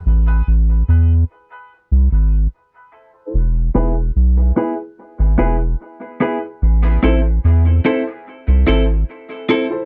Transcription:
<<
  \new Staff \with { instrumentName = "Upright piano" } { \time 4/4 \key a \minor \tempo 4 = 73 r8 <e' a' c''>16 r8. <e' a' c''>16 r8. <e' a' c''>16 r8. <e' a' c''>16 <e' a' c''>16 | r8 <e' gis' b'>16 r8. <e' gis' b'>16 r8. <e' gis' b'>16 r8. <e' gis' b'>16 r16 | r8 <e' a' c''>16 r8. <e' a' c''>16 r8. <e' a' c''>16 r8. <e' a' c''>16 <e' a' c''>16 | }
  \new Staff \with { instrumentName = "Clean electric guitar" } { \time 4/4 \key a \minor r4. <c' e' a'>8 r8 <c' e' a'>8 r8 <c' e' a'>8 | r8 <b e' gis'>8 r8 <b e' gis'>8 r8 <b e' gis'>8 r8 <b e' gis'>8 | r8 <c' e' a'>8 r8 <c' e' a'>8 r8 <c' e' a'>8 r8 <c' e' a'>8 | }
  \new Staff \with { instrumentName = "Sub bass" } { \clef bass \time 4/4 \key a \minor a,,8 a,,8 e,8 r8. c,16 gis,,8 r4 | e,,8 e,,8 b,,8 r8. gis,,16 e,,8 r4 | a,,8 a,,8 e,8 r8. c,16 gis,,8 r4 | }
>>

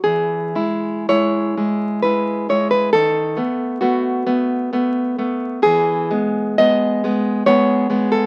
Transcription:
\new Staff \with { instrumentName = "Nylon-string guitar" } { \time 3/4 \key e \major \tempo 4 = 66 << { gis'4 cis''4 b'8 cis''16 b'16 | a'4 fis'4. r8 | gis'4 dis''4 cis''8. a'16 | } \\ { e8 <gis e'>8 <gis e'>8 <gis e'>8 <gis e'>8 <gis e'>8 | dis8 <a b>8 <a b>8 <a b>8 <a b>8 <a b>8 | e8 <gis b>8 <gis b>8 <gis b>8 <gis b>8 <gis b>8 | } >> }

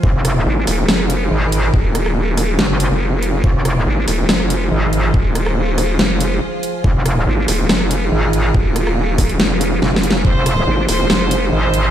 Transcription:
<<
  \new Staff \with { instrumentName = "Violin section" } { \time 4/4 \key f \minor \tempo 4 = 141 r1 | r1 | r1 | r1 |
r1 | r1 | c''4. c''4. c''4 | }
  \new Staff \with { instrumentName = "Ambient pad" } { \time 4/4 \key f \minor << { bes'1~ | bes'1 | c''1~ | c''1 |
bes'1~ | bes'1 | c''1 | } \\ { <f f' aes'>1~ | <f f' aes'>1~ | <f f' aes'>1~ | <f f' aes'>1~ |
<f f' aes'>1~ | <f f' aes'>1~ | <f f' aes'>1 | } >> }
  \new Staff \with { instrumentName = "Wobble bass" } { \clef bass \time 4/4 \key f \minor f,,4 r2 aes,,4 | r2 ges,,8 r4. | f,,4 r2 aes,,4 | r1 |
f,,4 r2 aes,,4 | r2. f,,8 r8 | f,,4 r2 aes,,4 | }
  \new Staff \with { instrumentName = "Wobble bass" } { \clef bass \time 4/4 \key f \minor r4 aes,,8 ees,,8 f,,4 r4 | ees,,2 r8. f,,4~ f,,16 | r4 aes,,8 ees,,8 f,,4 r4 | ees,,2 f,,4 r4 |
r4 aes,,8 ees,,8 f,,4 r4 | ees,,2 f,,4 r16 f,,8. | r4 aes,,8 ees,,8 f,,4 r4 | }
  \new DrumStaff \with { instrumentName = "Drums" } \drummode { \time 4/4 bd8 <hh ss>8 r8 <hho ss>8 sn16 ss16 hh8 r8 hh8 | bd8 <hh ss>16 ss16 r8 <hho ss>8 sn8 hh8 r8 hh8 | bd8 <hh ss>8 r8 <hho ss>8 sn16 ss16 hh8 r8 hh8 | bd8 <hh ss>16 ss16 r8 <hho ss>8 sn8 hh8 r8 hh8 |
bd8 <hh ss>8 r8 <hho ss>8 sn16 ss16 hh8 r8 hh8 | bd8 <hh ss>16 ss16 r8 <hho bd ss>16 hh16 sn8 hh8 \tuplet 3/2 { sn16 r16 sn16 hh16 sn16 r16 } | bd8 <hh ss>8 r8 <hho ss>8 sn16 ss16 hh8 r8 hh8 | }
>>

